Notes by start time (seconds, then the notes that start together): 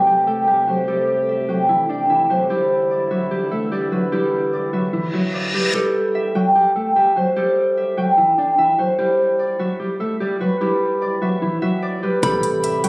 Already playing: C3 A3 E4 G4 A4 B4 D5 E5 G5
0.07 G3 G4
0.27 A3 A4 G5
0.47 G3 G4 E5
0.68 F#3 F#4 C5
0.88 G3 G4 A4
1.29 E5
1.49 F#3 F#4 G5
1.69 E3 E4
1.89 D4 D5 G5
2.10 E3 E4 E5
2.30 F#3 F#4 C5
2.50 D3 E3 G3 E4 G4
2.91 D5
3.11 F#3 F#4 E5
3.31 G3 G4
3.51 A3 A4 E5
3.72 G3 G4 D5
3.92 F#3 F#4 B4
4.12 G3 E4 G4
4.53 D5
4.73 F#3 F#4 E5
4.93 E3 E4, reverse cymbal
5.13 F#3 F#4 E5
5.34 D5
5.54 G3 G4 B4
5.74 G3 G4 A4
6.15 E5
6.35 F#3 F#4 G5
6.55 G3 G4
6.76 A3 A4 G5
6.96 G3 G4 E5
7.16 F#3 F#4 C5
7.36 G3 G4 A4
7.77 E5
7.97 F#3 F#4 G5
8.18 E3 E4
8.38 D4 D5 G5
8.58 E3 E4 E5
8.79 F#3 F#4 C5
8.98 G3 E4 G4
9.39 D5
9.59 F#3 F#4 E5
9.80 G3 G4
10.00 A3 A4 E5
10.20 G3 G4 D5
10.41 F#3 F#4 B4
10.61 G3 E4 G4
11.02 D5
11.22 F#3 F#4 E5
11.42 E3 E4
11.62 F#3 F#4 E5
11.82 D5
12.03 G3 G4 B4
12.23 A1 C3 G3 A3 G4 A4 B5, kick, closed hi-hat
12.43 closed hi-hat
12.64 E5, closed hi-hat
12.84 F#3 F#4 G5, closed hi-hat